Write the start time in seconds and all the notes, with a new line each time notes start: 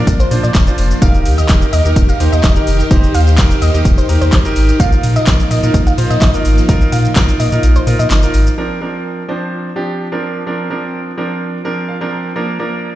Already playing: F3 A#3 D4 F4 A#4
0.07 A#1, kick, closed hi-hat, tambourine, shaker
0.20 C5, tambourine, shaker
0.31 A#2 D4 F4 C5, open hi-hat, tambourine, shaker
0.43 A#2 D5, shaker
0.55 D#1, kick, snare, clap, closed hi-hat, tambourine, shaker
0.67 D4 F4 C5, shaker
0.78 F1, open hi-hat, tambourine, shaker
0.91 tambourine, shaker
1.02 D#1 D#3 D#4 G4 A#4 F5, kick, closed hi-hat, tambourine, shaker
1.14 shaker
1.25 D#2, open hi-hat, tambourine, shaker
1.38 D#5, tambourine, shaker
1.49 D#1 D#4 G4 A#4, kick, snare, clap, closed hi-hat, tambourine, shaker
1.62 shaker
1.73 D#2 D#5, open hi-hat, tambourine, shaker
1.85 D#2 D#4 G4 A#4, shaker
1.96 D#1, kick, closed hi-hat, tambourine, shaker
2.09 F5, tambourine, shaker
2.20 D#2 D#4 G4 C5, open hi-hat, tambourine, shaker
2.33 D#2 D#5, shaker
2.43 D#1 D#5, kick, snare, clap, closed hi-hat, tambourine, shaker
2.56 D#4 G4 A#4, shaker
2.67 F1, open hi-hat, tambourine, shaker
2.80 tambourine, shaker
2.91 D#1 D#4 G4 C5, kick, closed hi-hat, tambourine, shaker
3.03 shaker
3.14 D#2 F5, open hi-hat, tambourine, shaker
3.27 tambourine, shaker
3.38 D#1 D#4 G4 A#4, kick, snare, clap, closed hi-hat, tambourine, shaker
3.51 shaker
3.62 D#2 D#5, open hi-hat, tambourine, shaker
3.74 D#2 D#4 G4 A#4, tambourine, shaker
3.85 D#1, kick, closed hi-hat, tambourine, shaker
3.98 C5, tambourine, shaker
4.09 D#2 D#4 G4 A#4, open hi-hat, tambourine, shaker
4.21 D#2 C5, shaker
4.32 G1, kick, snare, clap, closed hi-hat, tambourine, shaker
4.45 D#4 G4 A#4, shaker
4.56 G#1, open hi-hat, tambourine, shaker
4.69 tambourine, shaker
4.80 A#1 F3 A#3 D#4 F4 A#4 F5, kick, closed hi-hat, tambourine, shaker
4.92 shaker
5.03 A#2, open hi-hat, tambourine, shaker
5.16 D#5, shaker
5.27 A#1 D#4 F4 A#4, kick, snare, clap, closed hi-hat, tambourine, shaker
5.40 shaker
5.51 A#2 D#5, open hi-hat, tambourine, shaker
5.63 A#2 D#4 F4 A#4, tambourine, shaker
5.74 A#1, kick, closed hi-hat, tambourine, shaker
5.87 F5, shaker
5.98 A#2 D#4 F4 C5, open hi-hat, tambourine, shaker
6.10 A#2 D#5, shaker
6.21 G1 D#5, kick, snare, clap, closed hi-hat, tambourine, shaker
6.34 D#4 F4 A#4, shaker
6.45 G#1, open hi-hat, tambourine, shaker
6.58 tambourine, shaker
6.69 A#1 D#4 F4 A#4, kick, closed hi-hat, tambourine, shaker
6.81 shaker
6.92 A#2 F5, open hi-hat, tambourine, shaker
7.05 shaker
7.16 A#1 D#4 F4 A#4, kick, snare, clap, closed hi-hat, tambourine, shaker
7.29 shaker
7.40 A#2 D#5, open hi-hat, tambourine, shaker
7.52 A#2 D#4 F4 A#4, tambourine, shaker
7.63 A#1, closed hi-hat, tambourine, shaker
7.76 C5, shaker
7.87 A#2 D#4 F4 A#4, open hi-hat, tambourine, shaker
7.99 A#2 D#5, shaker
8.10 G1, snare, clap, closed hi-hat, tambourine, shaker
8.23 D#4 F4 A#4, shaker
8.34 G#1, open hi-hat, tambourine, shaker
8.47 shaker
8.58 F3 C4 D4 A#4
8.81 F3 C4 D4 A#4
9.28 F3 C4 D4 C5
9.76 F3 C4 D4 G4
10.12 F3 C4 D4 A#4
10.46 F3 C4 D4 A#4
10.70 F3 C4 D4 A#4
11.17 F3 C4 D4 A#4
11.65 F3 C4 D4 A#4
11.88 F5
12.01 F3 C4 D4 A#4
12.12 A#5
12.35 F3 A#3 D4 A#4
12.59 F3 A#3 D4 A#4